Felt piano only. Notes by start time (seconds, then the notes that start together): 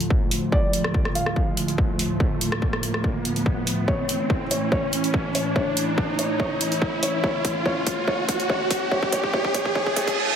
0.52 D5
1.15 F5
3.88 C#5
4.51 C#5
4.72 C#5
5.35 C#5
5.56 C#5
6.19 C#5
6.40 C#5
7.03 C#5
7.24 C#5
7.66 C#5
8.08 C#5
8.50 C#5
8.92 C#5
9.12 C#5
9.33 C#5
9.54 C#5
9.76 C#5
9.96 C#5